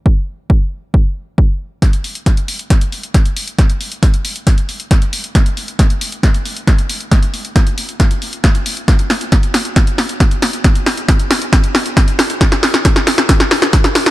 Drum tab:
HH |----------------|xxoxxxoxxxoxxxox|xxoxxxoxxxoxxxox|xxoxxxoxxxoxxxox|
SD |----------------|o---o---o---o---|o---o---o---o---|o---o---o---o---|
BD |o---o---o---o---|o---o---o---o---|o---o---o---o---|o---o---o---o---|

HH |xxoxxxoxxxoxxxox|xxoxxxoxxxoxxxox|xxoxxxoxxxoxxxox|xxoxxxoxxxoxxxox|
SD |o---o---o---o---|o-o-o-o-o-o-o-o-|o-o-o-o-o-o-o-o-|oooooooooooooooo|
BD |o---o---o---o---|o---o---o---o---|o---o---o---o---|o---o---o---o---|